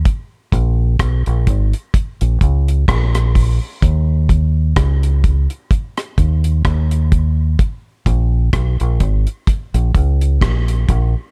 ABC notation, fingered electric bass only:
X:1
M:4/4
L:1/16
Q:"Swing 16ths" 1/4=64
K:Dbmix
V:1 name="Fingered electric bass" clef=bass
z2 B,,,2 C,, B,,, A,,, z2 B,,, D,,2 B,,,3 z | E,,4 D,,3 z3 E,,2 E,,4 | z2 B,,,2 C,, B,,, A,,, z2 B,,, D,,2 B,,,2 B,,, z |]